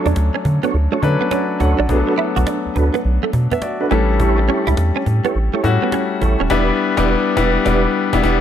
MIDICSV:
0, 0, Header, 1, 7, 480
1, 0, Start_track
1, 0, Key_signature, 2, "major"
1, 0, Tempo, 576923
1, 1572, Time_signature, 4, 2, 24, 8
1, 6994, End_track
2, 0, Start_track
2, 0, Title_t, "Tonewheel organ"
2, 0, Program_c, 0, 16
2, 523, Note_on_c, 0, 62, 79
2, 524, Note_on_c, 0, 66, 73
2, 527, Note_on_c, 0, 69, 67
2, 528, Note_on_c, 0, 73, 88
2, 636, Note_off_c, 0, 62, 0
2, 637, Note_off_c, 0, 66, 0
2, 638, Note_off_c, 0, 69, 0
2, 639, Note_off_c, 0, 73, 0
2, 762, Note_on_c, 0, 62, 78
2, 764, Note_on_c, 0, 66, 70
2, 767, Note_on_c, 0, 69, 69
2, 767, Note_on_c, 0, 73, 87
2, 876, Note_off_c, 0, 62, 0
2, 877, Note_off_c, 0, 66, 0
2, 878, Note_off_c, 0, 69, 0
2, 878, Note_off_c, 0, 73, 0
2, 1331, Note_on_c, 0, 62, 73
2, 1332, Note_on_c, 0, 66, 70
2, 1335, Note_on_c, 0, 69, 70
2, 1336, Note_on_c, 0, 73, 87
2, 1499, Note_off_c, 0, 62, 0
2, 1499, Note_off_c, 0, 66, 0
2, 1501, Note_off_c, 0, 69, 0
2, 1501, Note_off_c, 0, 73, 0
2, 1571, Note_on_c, 0, 62, 101
2, 1572, Note_on_c, 0, 66, 97
2, 1574, Note_on_c, 0, 69, 89
2, 1575, Note_on_c, 0, 71, 104
2, 1798, Note_off_c, 0, 62, 0
2, 1798, Note_off_c, 0, 66, 0
2, 1799, Note_off_c, 0, 69, 0
2, 1800, Note_off_c, 0, 71, 0
2, 2291, Note_on_c, 0, 62, 84
2, 2293, Note_on_c, 0, 66, 68
2, 2295, Note_on_c, 0, 69, 74
2, 2296, Note_on_c, 0, 71, 85
2, 2459, Note_off_c, 0, 62, 0
2, 2460, Note_off_c, 0, 66, 0
2, 2461, Note_off_c, 0, 69, 0
2, 2461, Note_off_c, 0, 71, 0
2, 3164, Note_on_c, 0, 62, 73
2, 3165, Note_on_c, 0, 66, 66
2, 3167, Note_on_c, 0, 69, 66
2, 3168, Note_on_c, 0, 71, 79
2, 3276, Note_off_c, 0, 62, 0
2, 3277, Note_off_c, 0, 66, 0
2, 3278, Note_off_c, 0, 69, 0
2, 3279, Note_off_c, 0, 71, 0
2, 3491, Note_on_c, 0, 64, 107
2, 3492, Note_on_c, 0, 67, 88
2, 3494, Note_on_c, 0, 69, 86
2, 3496, Note_on_c, 0, 73, 110
2, 3659, Note_off_c, 0, 64, 0
2, 3659, Note_off_c, 0, 67, 0
2, 3660, Note_off_c, 0, 69, 0
2, 3661, Note_off_c, 0, 73, 0
2, 3730, Note_on_c, 0, 64, 86
2, 3731, Note_on_c, 0, 67, 71
2, 3733, Note_on_c, 0, 69, 72
2, 3734, Note_on_c, 0, 73, 87
2, 3899, Note_off_c, 0, 64, 0
2, 3899, Note_off_c, 0, 67, 0
2, 3900, Note_off_c, 0, 69, 0
2, 3900, Note_off_c, 0, 73, 0
2, 4364, Note_on_c, 0, 64, 80
2, 4366, Note_on_c, 0, 67, 74
2, 4368, Note_on_c, 0, 69, 72
2, 4369, Note_on_c, 0, 73, 86
2, 4477, Note_off_c, 0, 64, 0
2, 4478, Note_off_c, 0, 67, 0
2, 4479, Note_off_c, 0, 69, 0
2, 4479, Note_off_c, 0, 73, 0
2, 4603, Note_on_c, 0, 64, 74
2, 4605, Note_on_c, 0, 67, 74
2, 4607, Note_on_c, 0, 69, 74
2, 4608, Note_on_c, 0, 73, 88
2, 4716, Note_off_c, 0, 64, 0
2, 4717, Note_off_c, 0, 67, 0
2, 4718, Note_off_c, 0, 69, 0
2, 4719, Note_off_c, 0, 73, 0
2, 5169, Note_on_c, 0, 64, 77
2, 5170, Note_on_c, 0, 67, 69
2, 5172, Note_on_c, 0, 69, 71
2, 5175, Note_on_c, 0, 73, 81
2, 5338, Note_off_c, 0, 64, 0
2, 5338, Note_off_c, 0, 67, 0
2, 5339, Note_off_c, 0, 69, 0
2, 5341, Note_off_c, 0, 73, 0
2, 5408, Note_on_c, 0, 64, 111
2, 5410, Note_on_c, 0, 67, 109
2, 5411, Note_on_c, 0, 71, 100
2, 5414, Note_on_c, 0, 74, 104
2, 5585, Note_off_c, 0, 64, 0
2, 5585, Note_off_c, 0, 67, 0
2, 5586, Note_off_c, 0, 71, 0
2, 5588, Note_off_c, 0, 74, 0
2, 5800, Note_on_c, 0, 64, 109
2, 5803, Note_on_c, 0, 67, 94
2, 5804, Note_on_c, 0, 71, 96
2, 5805, Note_on_c, 0, 74, 102
2, 5955, Note_off_c, 0, 64, 0
2, 5956, Note_off_c, 0, 67, 0
2, 5956, Note_off_c, 0, 71, 0
2, 5957, Note_off_c, 0, 74, 0
2, 6126, Note_on_c, 0, 64, 103
2, 6129, Note_on_c, 0, 67, 101
2, 6130, Note_on_c, 0, 71, 105
2, 6132, Note_on_c, 0, 74, 104
2, 6303, Note_off_c, 0, 64, 0
2, 6305, Note_off_c, 0, 67, 0
2, 6305, Note_off_c, 0, 71, 0
2, 6307, Note_off_c, 0, 74, 0
2, 6368, Note_on_c, 0, 64, 100
2, 6369, Note_on_c, 0, 67, 95
2, 6371, Note_on_c, 0, 71, 105
2, 6373, Note_on_c, 0, 74, 104
2, 6544, Note_off_c, 0, 64, 0
2, 6545, Note_off_c, 0, 67, 0
2, 6546, Note_off_c, 0, 71, 0
2, 6547, Note_off_c, 0, 74, 0
2, 6760, Note_on_c, 0, 64, 101
2, 6762, Note_on_c, 0, 67, 105
2, 6764, Note_on_c, 0, 71, 97
2, 6766, Note_on_c, 0, 74, 97
2, 6837, Note_off_c, 0, 64, 0
2, 6837, Note_off_c, 0, 67, 0
2, 6838, Note_off_c, 0, 71, 0
2, 6840, Note_off_c, 0, 74, 0
2, 6848, Note_on_c, 0, 64, 101
2, 6850, Note_on_c, 0, 67, 107
2, 6851, Note_on_c, 0, 71, 97
2, 6853, Note_on_c, 0, 74, 105
2, 6994, Note_off_c, 0, 64, 0
2, 6994, Note_off_c, 0, 67, 0
2, 6994, Note_off_c, 0, 71, 0
2, 6994, Note_off_c, 0, 74, 0
2, 6994, End_track
3, 0, Start_track
3, 0, Title_t, "Grand piano"
3, 0, Program_c, 1, 0
3, 0, Control_c, 1, 64, 127
3, 0, Note_on_c, 1, 54, 91
3, 0, Note_on_c, 1, 57, 81
3, 0, Note_on_c, 1, 61, 81
3, 0, Note_on_c, 1, 62, 79
3, 0, Note_on_c, 1, 69, 92
3, 539, Note_off_c, 1, 54, 0
3, 541, Note_off_c, 1, 57, 0
3, 542, Note_off_c, 1, 61, 0
3, 543, Note_off_c, 1, 62, 0
3, 544, Note_off_c, 1, 69, 0
3, 851, Note_on_c, 1, 54, 90
3, 853, Note_on_c, 1, 57, 84
3, 855, Note_on_c, 1, 61, 81
3, 858, Note_on_c, 1, 62, 83
3, 861, Note_on_c, 1, 71, 98
3, 1095, Note_on_c, 1, 74, 71
3, 1097, Note_off_c, 1, 71, 0
3, 1101, Note_on_c, 1, 66, 63
3, 1322, Note_off_c, 1, 74, 0
3, 1325, Note_off_c, 1, 66, 0
3, 1336, Note_on_c, 1, 78, 79
3, 1341, Note_on_c, 1, 69, 63
3, 1479, Note_off_c, 1, 78, 0
3, 1482, Note_off_c, 1, 69, 0
3, 1487, Note_on_c, 1, 74, 65
3, 1493, Note_on_c, 1, 66, 60
3, 1518, Note_off_c, 1, 54, 0
3, 1519, Note_off_c, 1, 57, 0
3, 1520, Note_off_c, 1, 61, 0
3, 1522, Note_off_c, 1, 62, 0
3, 1569, Note_on_c, 1, 54, 85
3, 1573, Note_on_c, 1, 57, 84
3, 1575, Note_on_c, 1, 59, 85
3, 1577, Note_on_c, 1, 62, 82
3, 1581, Note_on_c, 1, 68, 81
3, 1584, Control_c, 1, 64, 0
3, 1634, Note_on_c, 1, 69, 90
3, 1646, Note_off_c, 1, 68, 0
3, 1711, Control_c, 1, 64, 127
3, 1714, Note_off_c, 1, 74, 0
3, 1717, Note_off_c, 1, 66, 0
3, 2459, Note_off_c, 1, 54, 0
3, 2461, Note_off_c, 1, 57, 0
3, 2462, Note_off_c, 1, 59, 0
3, 2463, Note_off_c, 1, 62, 0
3, 2492, Note_off_c, 1, 69, 0
3, 2924, Note_on_c, 1, 76, 71
3, 3008, Note_off_c, 1, 76, 0
3, 3012, Note_on_c, 1, 74, 75
3, 3016, Note_on_c, 1, 66, 67
3, 3158, Note_off_c, 1, 74, 0
3, 3160, Note_off_c, 1, 66, 0
3, 3168, Note_on_c, 1, 71, 67
3, 3173, Note_on_c, 1, 62, 56
3, 3251, Note_on_c, 1, 55, 96
3, 3253, Note_on_c, 1, 57, 84
3, 3255, Note_on_c, 1, 61, 88
3, 3258, Note_on_c, 1, 64, 81
3, 3260, Note_on_c, 1, 69, 97
3, 3263, Control_c, 1, 64, 0
3, 3395, Note_off_c, 1, 71, 0
3, 3398, Note_off_c, 1, 62, 0
3, 3398, Control_c, 1, 64, 127
3, 4140, Note_off_c, 1, 55, 0
3, 4141, Note_off_c, 1, 57, 0
3, 4142, Note_off_c, 1, 61, 0
3, 4144, Note_off_c, 1, 64, 0
3, 4145, Note_off_c, 1, 69, 0
3, 4688, Note_on_c, 1, 55, 89
3, 4689, Note_on_c, 1, 57, 89
3, 4692, Note_on_c, 1, 61, 89
3, 4695, Note_on_c, 1, 64, 81
3, 4697, Note_on_c, 1, 66, 108
3, 5357, Note_off_c, 1, 55, 0
3, 5357, Note_off_c, 1, 57, 0
3, 5359, Note_off_c, 1, 61, 0
3, 5360, Note_off_c, 1, 64, 0
3, 5361, Note_off_c, 1, 66, 0
3, 5407, Note_on_c, 1, 55, 105
3, 5410, Note_on_c, 1, 59, 106
3, 5412, Note_on_c, 1, 62, 107
3, 5415, Note_on_c, 1, 64, 112
3, 5418, Note_on_c, 1, 71, 107
3, 5425, Control_c, 1, 64, 0
3, 5555, Control_c, 1, 64, 127
3, 5584, Note_off_c, 1, 55, 0
3, 5586, Note_off_c, 1, 59, 0
3, 5587, Note_off_c, 1, 62, 0
3, 5588, Note_off_c, 1, 64, 0
3, 5590, Note_off_c, 1, 71, 0
3, 5799, Note_on_c, 1, 55, 112
3, 5802, Note_on_c, 1, 59, 101
3, 5804, Note_on_c, 1, 62, 108
3, 5807, Note_on_c, 1, 64, 108
3, 5810, Note_on_c, 1, 71, 96
3, 5954, Note_off_c, 1, 55, 0
3, 5955, Note_off_c, 1, 59, 0
3, 5957, Note_off_c, 1, 62, 0
3, 5959, Note_off_c, 1, 64, 0
3, 5960, Note_off_c, 1, 71, 0
3, 6129, Note_on_c, 1, 55, 112
3, 6130, Note_on_c, 1, 59, 109
3, 6133, Note_on_c, 1, 62, 102
3, 6136, Note_on_c, 1, 64, 107
3, 6305, Note_off_c, 1, 55, 0
3, 6306, Note_off_c, 1, 59, 0
3, 6307, Note_off_c, 1, 62, 0
3, 6309, Note_off_c, 1, 64, 0
3, 6366, Note_on_c, 1, 55, 102
3, 6368, Note_on_c, 1, 59, 109
3, 6371, Note_on_c, 1, 62, 105
3, 6374, Note_on_c, 1, 64, 103
3, 6543, Note_off_c, 1, 55, 0
3, 6545, Note_off_c, 1, 59, 0
3, 6546, Note_off_c, 1, 62, 0
3, 6548, Note_off_c, 1, 64, 0
3, 6763, Note_on_c, 1, 55, 110
3, 6766, Note_on_c, 1, 59, 108
3, 6769, Note_on_c, 1, 62, 104
3, 6771, Note_on_c, 1, 64, 107
3, 6838, Note_off_c, 1, 55, 0
3, 6840, Note_off_c, 1, 59, 0
3, 6841, Note_off_c, 1, 62, 0
3, 6843, Note_off_c, 1, 64, 0
3, 6850, Note_on_c, 1, 55, 106
3, 6853, Note_on_c, 1, 59, 106
3, 6856, Note_on_c, 1, 62, 109
3, 6858, Note_on_c, 1, 64, 112
3, 6994, Note_off_c, 1, 55, 0
3, 6994, Note_off_c, 1, 59, 0
3, 6994, Note_off_c, 1, 62, 0
3, 6994, Note_off_c, 1, 64, 0
3, 6994, End_track
4, 0, Start_track
4, 0, Title_t, "Clean electric guitar"
4, 0, Program_c, 2, 27
4, 46, Note_on_c, 2, 62, 82
4, 99, Note_off_c, 2, 62, 0
4, 287, Note_on_c, 2, 61, 76
4, 339, Note_off_c, 2, 61, 0
4, 526, Note_on_c, 2, 59, 87
4, 579, Note_off_c, 2, 59, 0
4, 766, Note_on_c, 2, 57, 84
4, 819, Note_off_c, 2, 57, 0
4, 1005, Note_on_c, 2, 59, 71
4, 1058, Note_off_c, 2, 59, 0
4, 1093, Note_on_c, 2, 61, 88
4, 1185, Note_off_c, 2, 61, 0
4, 1486, Note_on_c, 2, 62, 75
4, 1538, Note_off_c, 2, 62, 0
4, 1812, Note_on_c, 2, 64, 78
4, 1904, Note_off_c, 2, 64, 0
4, 1966, Note_on_c, 2, 66, 90
4, 2018, Note_off_c, 2, 66, 0
4, 2053, Note_on_c, 2, 62, 88
4, 2145, Note_off_c, 2, 62, 0
4, 2446, Note_on_c, 2, 59, 77
4, 2499, Note_off_c, 2, 59, 0
4, 2688, Note_on_c, 2, 57, 85
4, 2740, Note_off_c, 2, 57, 0
4, 2928, Note_on_c, 2, 59, 79
4, 2980, Note_off_c, 2, 59, 0
4, 3254, Note_on_c, 2, 57, 74
4, 3346, Note_off_c, 2, 57, 0
4, 3732, Note_on_c, 2, 61, 91
4, 3825, Note_off_c, 2, 61, 0
4, 3885, Note_on_c, 2, 64, 87
4, 3938, Note_off_c, 2, 64, 0
4, 4125, Note_on_c, 2, 61, 78
4, 4178, Note_off_c, 2, 61, 0
4, 4364, Note_on_c, 2, 59, 86
4, 4417, Note_off_c, 2, 59, 0
4, 4606, Note_on_c, 2, 57, 79
4, 4658, Note_off_c, 2, 57, 0
4, 4846, Note_on_c, 2, 59, 74
4, 4898, Note_off_c, 2, 59, 0
4, 4933, Note_on_c, 2, 61, 82
4, 5025, Note_off_c, 2, 61, 0
4, 5326, Note_on_c, 2, 61, 78
4, 5378, Note_off_c, 2, 61, 0
4, 6994, End_track
5, 0, Start_track
5, 0, Title_t, "Analog synth bass"
5, 0, Program_c, 3, 38
5, 49, Note_on_c, 3, 40, 87
5, 115, Note_off_c, 3, 40, 0
5, 137, Note_on_c, 3, 38, 92
5, 252, Note_off_c, 3, 38, 0
5, 377, Note_on_c, 3, 50, 96
5, 492, Note_off_c, 3, 50, 0
5, 617, Note_on_c, 3, 38, 101
5, 733, Note_off_c, 3, 38, 0
5, 855, Note_on_c, 3, 50, 93
5, 971, Note_off_c, 3, 50, 0
5, 1336, Note_on_c, 3, 38, 99
5, 1452, Note_off_c, 3, 38, 0
5, 1492, Note_on_c, 3, 34, 90
5, 1556, Note_off_c, 3, 34, 0
5, 1574, Note_on_c, 3, 35, 97
5, 1691, Note_off_c, 3, 35, 0
5, 1969, Note_on_c, 3, 35, 97
5, 2034, Note_off_c, 3, 35, 0
5, 2211, Note_on_c, 3, 38, 52
5, 2244, Note_off_c, 3, 38, 0
5, 2297, Note_on_c, 3, 38, 89
5, 2412, Note_off_c, 3, 38, 0
5, 2538, Note_on_c, 3, 35, 105
5, 2653, Note_off_c, 3, 35, 0
5, 2775, Note_on_c, 3, 47, 88
5, 2891, Note_off_c, 3, 47, 0
5, 3255, Note_on_c, 3, 33, 104
5, 3740, Note_off_c, 3, 33, 0
5, 3889, Note_on_c, 3, 37, 89
5, 3954, Note_off_c, 3, 37, 0
5, 3975, Note_on_c, 3, 40, 89
5, 4091, Note_off_c, 3, 40, 0
5, 4215, Note_on_c, 3, 45, 95
5, 4331, Note_off_c, 3, 45, 0
5, 4454, Note_on_c, 3, 33, 104
5, 4571, Note_off_c, 3, 33, 0
5, 4694, Note_on_c, 3, 45, 101
5, 4811, Note_off_c, 3, 45, 0
5, 5173, Note_on_c, 3, 33, 102
5, 5290, Note_off_c, 3, 33, 0
5, 5326, Note_on_c, 3, 27, 89
5, 5393, Note_off_c, 3, 27, 0
5, 5412, Note_on_c, 3, 28, 99
5, 5587, Note_off_c, 3, 28, 0
5, 5805, Note_on_c, 3, 28, 95
5, 5957, Note_off_c, 3, 28, 0
5, 6133, Note_on_c, 3, 28, 104
5, 6307, Note_off_c, 3, 28, 0
5, 6373, Note_on_c, 3, 28, 114
5, 6547, Note_off_c, 3, 28, 0
5, 6766, Note_on_c, 3, 28, 108
5, 6840, Note_off_c, 3, 28, 0
5, 6853, Note_on_c, 3, 28, 107
5, 6994, Note_off_c, 3, 28, 0
5, 6994, End_track
6, 0, Start_track
6, 0, Title_t, "Cajon"
6, 48, Note_on_c, 9, 36, 103
6, 132, Note_off_c, 9, 36, 0
6, 133, Note_on_c, 9, 38, 113
6, 216, Note_off_c, 9, 38, 0
6, 375, Note_on_c, 9, 36, 96
6, 458, Note_off_c, 9, 36, 0
6, 527, Note_on_c, 9, 38, 69
6, 611, Note_off_c, 9, 38, 0
6, 614, Note_on_c, 9, 38, 41
6, 697, Note_off_c, 9, 38, 0
6, 854, Note_on_c, 9, 36, 98
6, 937, Note_off_c, 9, 36, 0
6, 1005, Note_on_c, 9, 38, 36
6, 1088, Note_off_c, 9, 38, 0
6, 1092, Note_on_c, 9, 38, 96
6, 1175, Note_off_c, 9, 38, 0
6, 1332, Note_on_c, 9, 38, 64
6, 1334, Note_on_c, 9, 36, 96
6, 1415, Note_off_c, 9, 38, 0
6, 1418, Note_off_c, 9, 36, 0
6, 1487, Note_on_c, 9, 38, 30
6, 1570, Note_off_c, 9, 38, 0
6, 1573, Note_on_c, 9, 36, 127
6, 1656, Note_off_c, 9, 36, 0
6, 1814, Note_on_c, 9, 38, 43
6, 1897, Note_off_c, 9, 38, 0
6, 1968, Note_on_c, 9, 36, 107
6, 2051, Note_off_c, 9, 36, 0
6, 2052, Note_on_c, 9, 38, 117
6, 2135, Note_off_c, 9, 38, 0
6, 2295, Note_on_c, 9, 36, 93
6, 2378, Note_off_c, 9, 36, 0
6, 2447, Note_on_c, 9, 38, 71
6, 2530, Note_off_c, 9, 38, 0
6, 2533, Note_on_c, 9, 38, 39
6, 2616, Note_off_c, 9, 38, 0
6, 2773, Note_on_c, 9, 36, 99
6, 2857, Note_off_c, 9, 36, 0
6, 2924, Note_on_c, 9, 36, 95
6, 3007, Note_off_c, 9, 36, 0
6, 3009, Note_on_c, 9, 38, 99
6, 3092, Note_off_c, 9, 38, 0
6, 3251, Note_on_c, 9, 38, 66
6, 3335, Note_off_c, 9, 38, 0
6, 3405, Note_on_c, 9, 38, 31
6, 3488, Note_off_c, 9, 38, 0
6, 3492, Note_on_c, 9, 36, 123
6, 3575, Note_off_c, 9, 36, 0
6, 3733, Note_on_c, 9, 38, 48
6, 3817, Note_off_c, 9, 38, 0
6, 3887, Note_on_c, 9, 36, 101
6, 3970, Note_off_c, 9, 36, 0
6, 3971, Note_on_c, 9, 38, 118
6, 4054, Note_off_c, 9, 38, 0
6, 4213, Note_on_c, 9, 36, 89
6, 4296, Note_off_c, 9, 36, 0
6, 4365, Note_on_c, 9, 38, 70
6, 4448, Note_off_c, 9, 38, 0
6, 4451, Note_on_c, 9, 38, 38
6, 4534, Note_off_c, 9, 38, 0
6, 4692, Note_on_c, 9, 36, 99
6, 4775, Note_off_c, 9, 36, 0
6, 4843, Note_on_c, 9, 38, 34
6, 4926, Note_off_c, 9, 38, 0
6, 4928, Note_on_c, 9, 38, 103
6, 5011, Note_off_c, 9, 38, 0
6, 5170, Note_on_c, 9, 38, 69
6, 5172, Note_on_c, 9, 36, 91
6, 5253, Note_off_c, 9, 38, 0
6, 5255, Note_off_c, 9, 36, 0
6, 5323, Note_on_c, 9, 38, 29
6, 5407, Note_off_c, 9, 38, 0
6, 5408, Note_on_c, 9, 38, 116
6, 5410, Note_on_c, 9, 36, 112
6, 5491, Note_off_c, 9, 38, 0
6, 5494, Note_off_c, 9, 36, 0
6, 5802, Note_on_c, 9, 38, 108
6, 5804, Note_on_c, 9, 36, 110
6, 5885, Note_off_c, 9, 38, 0
6, 5887, Note_off_c, 9, 36, 0
6, 6131, Note_on_c, 9, 36, 108
6, 6131, Note_on_c, 9, 38, 111
6, 6214, Note_off_c, 9, 36, 0
6, 6214, Note_off_c, 9, 38, 0
6, 6371, Note_on_c, 9, 36, 109
6, 6371, Note_on_c, 9, 38, 112
6, 6454, Note_off_c, 9, 38, 0
6, 6455, Note_off_c, 9, 36, 0
6, 6764, Note_on_c, 9, 38, 108
6, 6765, Note_on_c, 9, 36, 117
6, 6848, Note_off_c, 9, 36, 0
6, 6848, Note_off_c, 9, 38, 0
6, 6852, Note_on_c, 9, 36, 108
6, 6852, Note_on_c, 9, 38, 107
6, 6935, Note_off_c, 9, 36, 0
6, 6935, Note_off_c, 9, 38, 0
6, 6994, End_track
7, 0, Start_track
7, 0, Title_t, "Muted clean electric guitar strokes"
7, 374, Note_on_c, 9, 29, 51
7, 457, Note_off_c, 9, 29, 0
7, 852, Note_on_c, 9, 29, 45
7, 935, Note_off_c, 9, 29, 0
7, 1332, Note_on_c, 9, 29, 50
7, 1415, Note_off_c, 9, 29, 0
7, 1726, Note_on_c, 9, 29, 46
7, 1809, Note_off_c, 9, 29, 0
7, 2294, Note_on_c, 9, 29, 51
7, 2377, Note_off_c, 9, 29, 0
7, 2774, Note_on_c, 9, 29, 48
7, 2858, Note_off_c, 9, 29, 0
7, 3646, Note_on_c, 9, 29, 46
7, 3729, Note_off_c, 9, 29, 0
7, 4212, Note_on_c, 9, 29, 51
7, 4295, Note_off_c, 9, 29, 0
7, 4693, Note_on_c, 9, 29, 45
7, 4776, Note_off_c, 9, 29, 0
7, 5173, Note_on_c, 9, 29, 50
7, 5256, Note_off_c, 9, 29, 0
7, 6994, End_track
0, 0, End_of_file